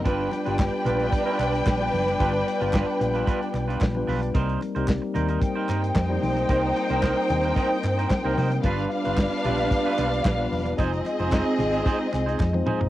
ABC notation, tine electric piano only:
X:1
M:4/4
L:1/16
Q:1/4=112
K:Gphr
V:1 name="Tine electric piano"
[G,=B,DF=B]2 z [G,B,DFG]2 z [G,B,DFB]6 z [G,B,DFB]2 z | [G,=B,DF=B]2 z [G,B,DFB]2 z [G,B,DFB]6 z [G,B,DFB]2 z | [G,B,CEB]2 z [G,B,CEG]2 z [G,B,CEB]6 z [G,B,CEF]2 z | [G,B,CEB]2 z [G,B,CEB]2 z [G,B,CDEc]6 z [G,B,CEB]2 z |
[G,=B,DF=B]2 z [G,B,DFB]2 z [G,_B,=B,DFG]6 z [G,B,DFB]2 z | [A,CEFc]2 z [A,CEFc]2 z [A,CEFA]6 z [A,CEFc]2 z |]